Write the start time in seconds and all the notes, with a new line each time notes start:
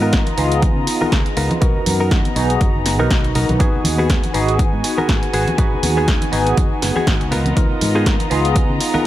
Already playing: G#2 B3 D#4 F4 A#4 D#5 A#5
0.02 B3 D#4 F4 A#4, tambourine
0.13 kick, snare, closed hi-hat
0.27 closed hi-hat, tambourine, high conga
0.37 C#2 B3 D#4 F4 G#4, muted clean electric guitar stroke, open hi-hat, tambourine
0.52 closed hi-hat
0.62 kick, closed hi-hat, tambourine, high conga
0.76 C#3, tambourine
0.87 muted clean electric guitar stroke, open hi-hat, tambourine
1.01 B3 D#4 F4 A#4, muted fingered electric bass stroke, tambourine, high conga
1.12 C#2, kick, snare, closed hi-hat
1.26 closed hi-hat, tambourine
1.37 C#2 B3 D#4 F4 A#4, open hi-hat
1.51 closed hi-hat, tambourine, high conga
1.61 B1 B3 D#4 F#4 A#4 A#5, kick, closed hi-hat
1.75 tambourine, low conga
1.86 F#2, open hi-hat, tambourine, high conga
2.00 B3 D#4 A#4, tambourine
2.11 kick, snare, closed hi-hat
2.25 closed hi-hat, tambourine, high conga
2.35 B1 B3 D#4 F#4 G#4, muted clean electric guitar stroke, open hi-hat, tambourine
2.50 closed hi-hat
2.61 kick, closed hi-hat, tambourine, high conga
2.75 tambourine
2.85 muted clean electric guitar stroke, snare, open hi-hat, tambourine
2.99 B1 B3 D#4 F#4 A#4, tambourine, high conga
3.11 kick, snare, closed hi-hat
3.24 closed hi-hat
3.34 B1 B3 D#4 A#4, open hi-hat, tambourine, low conga
3.49 B1, closed hi-hat, tambourine, high conga
3.59 B3 D#4 F#4 G#4 G#5, kick, closed hi-hat
3.74 tambourine, low conga
3.84 D#2, open hi-hat, tambourine, high conga
3.98 B3 F#4 G#4, tambourine
4.10 kick, snare, closed hi-hat
4.24 closed hi-hat, tambourine, high conga
4.34 G#1 B3 D#4 F#4 G#4, muted clean electric guitar stroke, open hi-hat, tambourine
4.48 closed hi-hat, tambourine
4.59 kick, closed hi-hat, tambourine, high conga
4.73 G#2, tambourine
4.84 muted clean electric guitar stroke, open hi-hat, tambourine
4.98 B3 F#4 A#4, muted fingered electric bass stroke, tambourine, high conga
5.09 G#1, kick, snare, closed hi-hat
5.22 closed hi-hat, tambourine
5.33 G#1 B3 F#4 G#4, open hi-hat, tambourine
5.48 closed hi-hat, tambourine, high conga
5.58 G#1 B3 D#4 F#4 G#4 B4, kick, closed hi-hat
5.73 tambourine, low conga
5.83 D#2, open hi-hat, tambourine, high conga
5.97 B3 F#4 G#4, tambourine
6.08 kick, snare, closed hi-hat
6.22 closed hi-hat, tambourine, high conga
6.32 G#1 B3 D#4 F#4 G#4, muted clean electric guitar stroke, open hi-hat, tambourine
6.47 closed hi-hat, tambourine
6.57 F#1, kick, closed hi-hat, tambourine, high conga
6.72 tambourine
6.82 F#1, muted clean electric guitar stroke, snare, open hi-hat, tambourine
6.96 B3 F#4 G#4, muted fingered electric bass stroke, tambourine, high conga
7.07 G#1, kick, snare, closed hi-hat
7.21 C#2, closed hi-hat, tambourine
7.32 B3 D#4 F4 A#4 D#5 A#5, open hi-hat, tambourine, low conga
7.45 closed hi-hat, tambourine, high conga
7.56 C#2 B3 D#4 F4 A#4, kick, closed hi-hat
7.70 tambourine, low conga
7.81 G#2, open hi-hat, tambourine, high conga
7.95 B3 D#4 F4 G#4, tambourine
8.06 kick, snare, closed hi-hat
8.20 closed hi-hat, tambourine, high conga
8.30 C#2 B3 D#4 F4 G#4, muted clean electric guitar stroke, open hi-hat, tambourine
8.45 closed hi-hat, tambourine
8.55 kick, closed hi-hat, tambourine, high conga
8.70 C#3, tambourine
8.80 muted clean electric guitar stroke, open hi-hat, tambourine
8.94 B3 D#4 F4 A#4, muted fingered electric bass stroke, tambourine, high conga